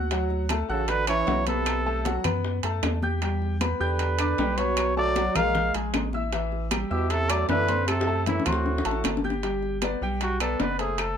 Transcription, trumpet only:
0.70 A4
0.89 B4
1.09 C#5
1.48 A4
3.81 B4
4.58 C#5
4.97 D5
5.36 F5
6.92 G4
7.11 A4
7.30 D5
7.49 B4
7.88 A4
8.27 E4
8.46 F#4
10.23 F#4
10.41 A4
10.61 B4
10.80 G#4
11.01 A4

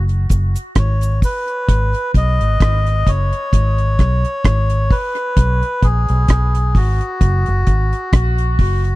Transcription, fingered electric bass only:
Already playing: F#1
0.31 F#1
0.77 G#1
1.69 G#1
2.15 B1
2.41 G#1
2.61 G#1
3.08 F#1
3.54 G#1
4.00 B1
4.45 G#1
5.37 B1
5.83 A#1
6.10 B1
6.29 B1
6.75 G#1
7.21 F#1
7.48 F#1
7.68 G#1
8.13 A#1
8.60 F#1

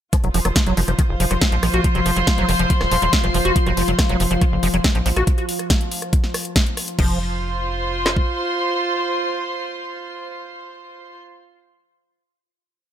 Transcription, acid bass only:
0.13 F3
0.24 F#3
0.34 F3
0.45 F#3
0.67 F#3
0.77 F3
0.88 F3
0.99 D#3
1.20 F3
1.31 F#3
1.41 C4
1.52 F3
1.63 F3
1.74 F#4
1.84 F3
1.95 F#3
2.06 F3
2.17 F#3
2.38 F#3
2.49 F3
2.59 F3
2.70 D#3
2.91 F3
3.02 F#3
3.13 C4
3.24 F3
3.34 F3
3.45 F#4
3.56 F3
3.66 F#3
3.77 F3
3.88 F#3
4.09 F#3
4.20 F3
4.31 F3
4.42 D#3
4.63 F3
4.74 F#3
4.84 C4
4.95 F3
5.06 F3
5.16 F#4
6.99 F3

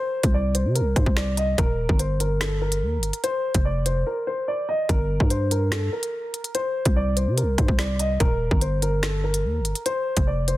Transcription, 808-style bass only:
0.24 C2
0.65 C3
0.81 C2
0.96 G2
1.06 C2
1.58 D#1
1.89 G1
2.82 D#2
2.98 G1
3.55 F1
4.89 G1
5.20 G2
6.86 C2
7.27 C3
7.43 C2
7.58 G2
7.68 C2
8.20 D#1
8.51 G1
9.44 D#2
9.60 G1
10.17 F1

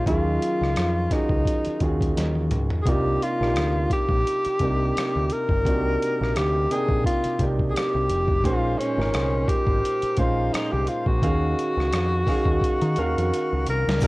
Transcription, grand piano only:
0.07 D#3 F#3 C#4 F4 G#4
1.11 D#3 C#4 F4 F#4 G#4
1.81 D#3 C#4 F4 F#4 G#4
2.86 C3 A#3 D4 D#4 F4
3.41 C3 A#3 D4 D#4 G4
4.61 C3 A#3 D4 D#4 G4
5.65 C3 A#3 D4 D#4 F#4
5.74 G4
6.70 C3 A#3 D4 D#4 G5
7.40 C3 A#3 D4 D#4 G4
8.44 A#2 G#3 C#4 D#4 C5
8.98 A#2 G#3 C#4 D#4 A#4
10.18 A#2 G#3 C#4 D#4 C5
11.23 D#3 C#4 F#4 G#4 F5
12.27 D#3 C#4 F#4 G#4 F5
12.97 D#3 C#4 F#4 A#4 F5
14.01 C3 A#3 D4 D#4 F4

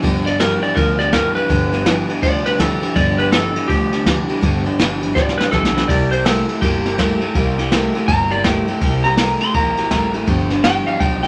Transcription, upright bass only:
0.04 G1
0.77 D2
1.49 G1
2.23 D2
2.96 G1
3.70 D2
4.43 G1
4.80 G1
5.15 A1
5.52 B1
5.89 C2
6.62 G1
7.35 C2
8.08 G1
8.81 C2
9.55 A#1
9.91 A1
10.28 G1
11.00 B1

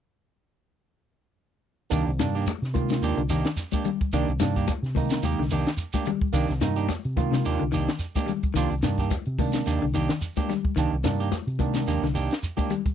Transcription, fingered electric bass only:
1.92 C2
2.07 C2
2.19 G2
2.47 muted fingered electric bass stroke
2.62 C3
3.02 D#2
3.17 C2
4.13 C2
4.28 C2
4.40 G2
4.68 muted fingered electric bass stroke
4.83 C3
5.23 D#2
5.38 C2
6.33 C2
6.50 C2
6.62 G2
6.89 muted fingered electric bass stroke
7.05 C3
7.46 D#2
7.62 C2
8.56 C2
8.71 C2
8.83 G2
9.11 muted fingered electric bass stroke
9.27 C3
9.67 D#2
9.83 C2
10.77 C2
10.92 C2
11.04 G2
11.33 muted fingered electric bass stroke
11.47 C3
11.87 D#2
12.02 C2

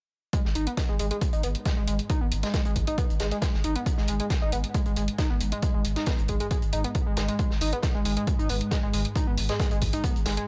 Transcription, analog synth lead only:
0.33 G#3
0.55 D#4
0.67 B3
0.89 G#3
0.99 G#3
1.11 G#3
1.33 D#4
1.43 B3
1.65 G#3
1.77 G#3
1.87 G#3
2.10 D#4
2.21 B3
2.43 G#3
2.54 G#3
2.65 G#3
2.87 D#4
2.98 B3
3.20 G#3
3.31 G#3
3.42 G#3
3.64 D#4
3.76 B3
3.98 G#3
4.08 G#3
4.20 G#3
4.42 D#4
4.53 B3
4.74 G#3
4.86 G#3
4.97 G#3
5.19 D#4
5.30 B3
5.52 G#3
5.63 G#3
5.74 G#3
5.96 D#4
6.07 B3
6.29 G#3
6.40 G#3
6.51 G#3
6.73 D#4
6.84 B3
7.06 G#3
7.17 G#3
7.28 G#3
7.39 G#3
7.61 D#4
7.73 B3
7.95 G#3
8.05 G#3
8.17 G#3
8.39 D#4
8.49 B3
8.71 G#3
8.83 G#3
8.94 G#3
9.16 D#4
9.27 B3
9.49 G#3
9.60 G#3
9.71 G#3
9.93 D#4
10.04 B3
10.26 G#3
10.37 G#3

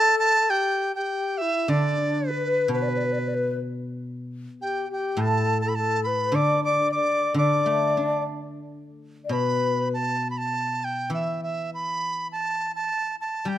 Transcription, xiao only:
Already playing: A4
0.43 A4
0.50 G4
0.96 G4
1.42 E4
1.72 D4
2.30 B4
2.75 B4
2.83 D5
2.89 B4
2.97 D5
3.05 B4
3.12 D5
3.19 B4
3.28 D5
3.35 B4
4.62 G4
4.90 G4
5.19 A4
5.65 A4
5.78 A4
6.06 B4
6.35 D5
6.64 D5
6.95 D5
7.39 D5
9.25 D5
9.32 B4

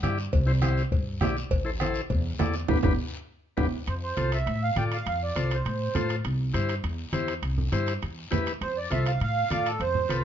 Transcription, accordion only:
3.88 C5
4.03 C5
4.33 E5
4.63 F5
4.78 G5
4.93 F5
5.07 F5
5.23 D5
5.54 C5
8.62 C5
8.78 D5
8.92 E5
9.07 F5
9.23 F5
9.67 A4
9.81 C5

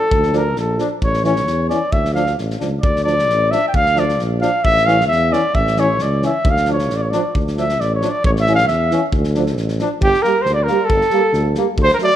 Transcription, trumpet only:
Already playing: A4
0.37 A#4
0.59 A4
1.04 C#5
1.25 C#5
1.70 D5
1.92 E5
2.14 F5
2.81 D5
3.04 D5
3.51 E5
3.68 G5
3.75 F5
3.99 D5
4.41 F5
4.64 E5
4.86 F5
5.07 E5
5.32 D5
5.55 E5
5.80 C#5
6.02 D5
6.26 E5
6.50 F5
6.72 C#5
6.96 D5
7.02 C#5
7.10 D5
7.58 E5
7.80 D5
7.95 C#5
8.09 D5
8.25 C#5
8.40 E5
8.55 F5
8.68 E5
10.03 G4
10.22 A#4
10.42 C5
10.53 D5
10.63 A#4
10.85 A4
11.83 C5
11.94 A#4
12.03 D5

